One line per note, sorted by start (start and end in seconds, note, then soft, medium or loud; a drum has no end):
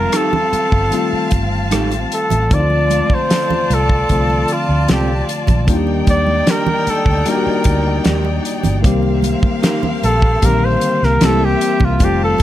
0.00 0.40 D#3 medium
0.00 0.41 F3 medium
0.00 0.40 G3 medium
0.00 0.41 C4 medium
0.00 2.47 C4 medium
0.00 0.45 F4 medium
0.00 0.18 A#4 loud
0.00 2.47 F5 medium
0.00 2.47 A5 medium
0.12 0.33 D#4 medium
0.12 0.34 G4 medium
0.12 0.34 A4 medium
0.12 1.34 A4 medium
0.12 cross-stick medium
0.12 closed hi-hat medium
0.12 muted conga soft
0.33 low conga medium
0.53 muted fingered electric bass stroke soft
0.53 closed hi-hat medium
0.53 high conga soft
0.72 0.89 G1 medium
0.72 kick medium
0.90 1.98 D#3 medium
0.90 1.99 G3 medium
0.90 1.99 A3 medium
0.90 2.00 C4 medium
0.90 2.00 F4 medium
0.90 closed hi-hat medium
0.90 muted conga soft
1.13 muted fingered electric bass stroke soft
1.31 1.72 G1 medium
1.31 kick medium
1.31 closed hi-hat medium
1.71 2.05 A1 medium
1.71 1.92 D#4 medium
1.71 1.92 G4 medium
1.71 1.93 A4 medium
1.71 cross-stick loud
1.71 closed hi-hat medium
1.71 muted conga soft
1.71 high conga medium
1.91 closed hi-hat medium
1.91 muted conga soft
2.12 2.56 A4 medium
2.12 closed hi-hat medium
2.30 2.48 A1 medium
2.30 closed hi-hat soft
2.30 low conga medium
2.50 3.01 D2 medium
2.50 3.58 D3 medium
2.50 3.58 F3 medium
2.50 3.58 A3 medium
2.50 3.59 C4 medium
2.50 2.59 D#4 medium
2.50 5.64 F4 medium
2.50 5.64 D5 medium
2.50 5.64 A5 medium
2.50 kick loud
2.50 closed hi-hat medium
2.50 muted conga soft
2.54 3.16 D5 loud
2.60 3.63 F4 medium
2.70 muted conga soft
2.90 closed hi-hat medium
2.90 high conga medium
3.10 muted fingered electric bass stroke soft
3.10 kick medium
3.10 high conga medium
3.14 3.75 C5 loud
3.30 3.50 C4 medium
3.30 3.51 F4 medium
3.30 3.51 A4 medium
3.30 snare loud
3.30 closed hi-hat loud
3.30 muted conga soft
3.50 muted conga soft
3.50 low conga medium
3.70 4.03 C2 medium
3.70 4.54 A4 medium
3.70 closed hi-hat medium
3.70 high conga medium
3.90 kick medium
4.09 4.43 C2 medium
4.09 5.16 D3 medium
4.09 5.17 F3 medium
4.09 5.17 A3 medium
4.09 5.17 C4 medium
4.09 5.18 F4 medium
4.09 kick medium
4.09 closed hi-hat medium
4.30 muted conga soft
4.48 closed hi-hat medium
4.53 4.91 F4 medium
4.69 4.85 D2 medium
4.88 5.22 C2 medium
4.88 5.09 C4 medium
4.88 5.09 F4 medium
4.88 5.27 G4 medium
4.88 5.10 A4 medium
4.88 snare loud
4.88 closed hi-hat medium
4.88 high conga medium
5.08 muted conga soft
5.29 closed hi-hat medium
5.47 5.68 A#1 medium
5.47 kick medium
5.47 closed hi-hat medium
5.47 low conga medium
5.67 6.01 D#2 loud
5.67 6.74 D#3 medium
5.67 6.75 G3 medium
5.67 6.75 A#3 medium
5.67 6.76 D4 medium
5.67 8.81 D#4 medium
5.67 5.75 F4 medium
5.67 8.81 D5 medium
5.67 8.81 G5 medium
5.67 kick loud
5.67 closed hi-hat medium
5.67 muted conga soft
5.77 6.79 G4 medium
5.87 muted conga soft
6.07 6.40 D#2 medium
6.07 6.52 D5 loud
6.07 kick medium
6.07 closed hi-hat medium
6.07 high conga medium
6.27 high conga medium
6.46 6.67 D4 medium
6.46 6.67 G4 medium
6.46 6.68 A#4 medium
6.46 snare loud
6.46 closed hi-hat medium
6.50 6.91 A#4 loud
6.67 low conga medium
6.86 7.31 A4 medium
6.86 muted fingered electric bass stroke soft
6.86 closed hi-hat medium
6.86 high conga medium
7.06 7.23 D2 medium
7.06 kick medium
7.26 8.33 G3 medium
7.26 8.34 A#3 medium
7.26 8.34 D4 medium
7.26 8.33 D#4 medium
7.26 7.34 F#4 medium
7.26 8.07 A#4 medium
7.26 closed hi-hat medium
7.26 muted conga soft
7.36 8.38 G4 medium
7.46 muted fingered electric bass stroke soft
7.64 7.99 D2 medium
7.64 kick medium
7.64 closed hi-hat medium
8.04 8.38 D#2 medium
8.04 8.25 D4 medium
8.04 8.26 G4 medium
8.04 8.26 A#4 medium
8.04 snare loud
8.04 closed hi-hat medium
8.04 muted conga soft
8.04 high conga medium
8.25 muted conga soft
8.45 closed hi-hat medium
8.63 8.81 G1 medium
8.63 closed hi-hat medium
8.63 low conga medium
8.82 9.34 C2 medium
8.82 9.90 D#3 medium
8.82 9.91 G3 medium
8.82 9.91 A#3 medium
8.82 11.17 A#3 medium
8.82 11.18 C4 medium
8.82 9.92 C4 medium
8.82 9.92 G4 loud
8.82 11.17 F5 medium
8.82 kick loud
8.82 closed hi-hat medium
9.03 muted conga soft
9.22 closed hi-hat medium
9.22 high conga medium
9.43 muted fingered electric bass stroke soft
9.43 kick loud
9.43 high conga medium
9.62 9.83 D#4 medium
9.62 9.84 G4 medium
9.62 9.84 A#4 medium
9.62 snare loud
9.62 closed hi-hat loud
9.62 muted conga soft
9.83 muted conga soft
9.83 low conga medium
10.03 10.36 A#1 medium
10.03 10.47 A4 loud
10.03 closed hi-hat medium
10.03 high conga medium
10.22 kick medium
10.41 10.76 A#1 loud
10.41 10.48 D3 medium
10.41 11.20 G3 medium
10.41 11.21 A#3 medium
10.41 11.22 C4 medium
10.41 11.22 G4 medium
10.41 kick medium
10.41 closed hi-hat medium
10.41 muted conga soft
10.45 11.24 D#3 medium
10.45 10.66 A#4 loud
10.65 11.06 C5 loud
10.81 closed hi-hat medium
11.03 11.19 C2 medium
11.03 11.27 A#4 medium
11.03 snare soft
11.20 11.54 C2 loud
11.20 11.84 E3 medium
11.20 11.85 G3 medium
11.20 11.85 A#3 medium
11.20 11.41 C4 medium
11.20 11.99 C4 medium
11.20 11.85 C4 medium
11.20 11.42 E4 medium
11.20 11.86 G4 medium
11.20 11.99 A#4 medium
11.20 11.42 A#4 medium
11.20 11.99 E5 medium
11.20 snare loud
11.20 closed hi-hat medium
11.20 high conga medium
11.25 11.46 A4 loud
11.45 11.86 G4 medium
11.61 closed hi-hat medium
11.80 11.97 C2 medium
11.80 kick medium
11.80 low conga medium
11.85 12.06 F4 medium
11.99 12.33 F1 loud
11.99 12.43 D#3 medium
11.99 12.43 G3 medium
11.99 12.43 A3 medium
11.99 12.43 C4 medium
11.99 12.43 F5 medium
11.99 12.43 A5 medium
11.99 kick loud
11.99 closed hi-hat medium
11.99 muted conga soft
12.03 12.43 F4 medium
12.03 12.22 G4 medium
12.24 12.43 A4 loud
12.38 high conga medium